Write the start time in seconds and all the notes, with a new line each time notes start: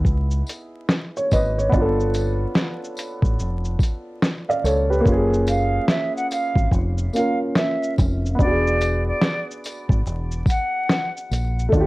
Already playing: B3 D#4 E4 G#4
0.05 C#2, kick, shaker
0.31 shaker
0.47 closed hi-hat, tambourine, shaker
0.89 snare, shaker
1.17 C#5, shaker
1.31 G#1 B4 D#5, kick, closed hi-hat, tambourine, shaker
1.58 C#5, shaker
1.70 G1 B3 D4, kick, shaker
1.77 F4
1.82 A4
2.00 shaker
2.14 closed hi-hat, tambourine, shaker
2.55 snare, shaker
2.84 shaker
2.97 closed hi-hat, tambourine, shaker
3.22 A1, kick, shaker
3.40 F1, shaker
3.65 shaker
3.79 kick, tambourine
3.83 closed hi-hat, shaker
4.22 snare, shaker
4.49 D5 F5, shaker
4.64 C#2 A4 C#5, closed hi-hat, tambourine, shaker
4.90 G4 B4, shaker
5.00 A#3 C#4
5.06 F#1 F4, kick, shaker
5.12 G#4
5.34 shaker
5.47 F5, closed hi-hat, tambourine, shaker
5.88 E5, snare, shaker
6.16 F#5, shaker
6.31 F5, closed hi-hat, tambourine, shaker
6.55 G#1, kick, shaker
6.71 F1, kick, shaker
6.98 shaker
7.13 A#3 C#4 F4 F5, closed hi-hat, tambourine, shaker
7.19 A#4
7.55 E5, snare, shaker
7.84 shaker
7.98 F1, kick, closed hi-hat, tambourine, shaker
8.26 shaker
8.35 B3
8.39 E1 D4 D5, kick, shaker
8.43 F#4 G#4
8.67 shaker
8.81 closed hi-hat, tambourine, shaker
9.08 D5
9.22 snare, shaker
9.51 shaker
9.64 closed hi-hat, tambourine, shaker
9.89 G#1, kick, shaker
10.06 E1, shaker
10.31 shaker
10.46 F#5, kick, tambourine
10.50 closed hi-hat, shaker
10.89 snare, shaker
11.17 shaker
11.31 A#1, closed hi-hat, tambourine, shaker
11.59 shaker
11.69 A3 D4, kick
11.73 D#2 F4, shaker
11.80 G4